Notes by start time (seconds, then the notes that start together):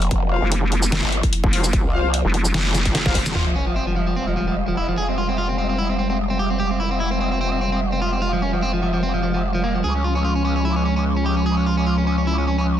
Already playing: F3 A#3
0.02 closed hi-hat
0.11 F1 E4, kick, closed hi-hat
0.31 F4 C5 F5
0.42 F1
0.52 closed hi-hat
0.72 closed hi-hat
0.83 shaker
0.92 snare, closed hi-hat
1.03 G1
1.12 closed hi-hat
1.23 kick, closed hi-hat
1.33 closed hi-hat
1.44 F1, kick
1.53 F4 C5 F5, open hi-hat
1.64 closed hi-hat, shaker
1.73 kick, closed hi-hat
1.84 C2
1.93 F4 C5 F5
2.14 closed hi-hat
2.25 F1
2.34 closed hi-hat
2.45 shaker
2.54 F1, snare, closed hi-hat
2.75 snare, closed hi-hat, shaker
2.86 kick, closed hi-hat
2.95 snare, closed hi-hat
3.06 F4 C5 F5, kick, snare
3.15 kick, open hi-hat
3.26 snare, closed hi-hat, shaker
3.35 F1 G3 G#3 F4, sub drop
3.46 F3
3.56 C#4
3.67 F3
3.76 C4
3.87 F3
3.96 F3
4.07 F3
4.16 C4
4.27 F3
4.37 F3
4.48 F3
4.68 F3
4.77 E4
4.88 F3
4.98 G#4
5.09 C4
5.18 F4
5.29 C4
5.38 F4
5.49 C4
5.58 C4
5.69 C4
5.78 E4
5.89 C4
5.99 C4
6.10 C4
6.30 C4
6.39 G4
6.50 C4
6.60 G4
6.71 C4
6.80 E4
6.91 C4
7.00 E4
7.11 C4
7.21 C4
7.32 C4
7.41 C4
7.52 C4
7.61 C4
7.72 C4
7.92 C4
8.02 F4
8.13 C4
8.22 F4
8.33 F3
8.42 C#4
8.53 F3
8.62 C4
8.73 F3
8.83 F3
8.94 F3
9.03 C4
9.14 F3
9.23 F3
9.34 F3
9.54 F3
9.64 A#3
9.75 F3
9.84 C#2 F3 G#3 C#4 G#4
9.95 C#4
10.04 F4
10.15 C#4
10.24 F4
10.35 C#4
10.45 C#4
10.56 C#4
10.65 E4
10.76 C#4
10.85 C#4
10.96 C#4
11.17 C#4
11.26 G4
11.37 C#4
11.46 G#4
11.57 C#4
11.66 F4
11.77 C#4
11.87 F4
11.98 C#4
12.07 C#4
12.18 C#4
12.27 E4
12.38 C#4
12.47 C#4
12.58 C#4